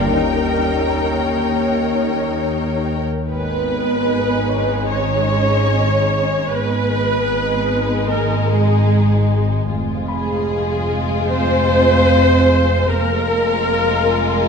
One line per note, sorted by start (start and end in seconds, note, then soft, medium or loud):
0.00 3.06 A#4 medium
0.00 3.30 A#4 medium
0.00 3.05 G5 medium
0.00 3.30 G5 medium
0.09 3.29 D#2 medium
0.09 3.05 D#2 soft
0.09 2.98 D#3 soft
0.09 2.94 A#3 soft
0.09 2.97 C#4 medium
0.09 2.86 D#4 medium
0.09 2.93 G4 soft
0.09 3.06 C#5 medium
0.09 3.30 C#5 medium
0.89 3.25 A#5 soft
3.29 6.45 G#1 medium
3.29 6.45 G#1 soft
3.29 6.45 G#3 soft
3.29 4.86 B3 soft
3.29 6.45 D#4 soft
3.29 6.46 G#4 medium
3.29 4.86 B4 medium
3.29 6.46 D#5 medium
3.29 6.46 G#5 medium
4.49 6.85 C#5 soft
4.49 6.86 C#6 soft
4.89 6.50 C#4 medium
4.89 6.49 C#5 medium
4.89 6.50 C#5 medium
6.49 9.65 G#1 medium
6.49 9.66 G#1 medium
6.49 9.66 G#3 medium
6.49 8.07 B3 medium
6.49 9.66 D#4 medium
6.49 9.66 G#4 medium
6.49 8.06 B4 medium
6.49 8.10 B4 medium
6.49 9.66 D#5 medium
6.49 9.66 G#5 medium
8.09 8.50 A#3 medium
8.09 8.49 A#4 medium
8.09 8.50 A#4 medium
8.49 9.30 G#3 soft
8.49 9.29 G#4 medium
9.69 12.86 F1 medium
9.69 12.89 F2 medium
9.69 12.86 G#3 medium
9.69 12.86 F4 medium
9.69 12.86 G#4 soft
9.69 12.88 F5 medium
9.69 12.86 G#5 medium
10.08 11.26 G#3 medium
10.08 11.26 G#4 medium
10.08 12.45 B5 soft
11.29 12.90 C4 medium
11.29 12.89 C5 medium
12.89 14.48 F1 medium
12.89 14.48 F2 medium
12.89 14.48 G#3 medium
12.89 14.48 A#3 medium
12.89 14.48 F4 medium
12.89 14.48 G#4 medium
12.89 14.46 A#4 medium
12.89 14.48 A#4 medium
12.89 14.48 F5 medium
12.89 14.48 G#5 medium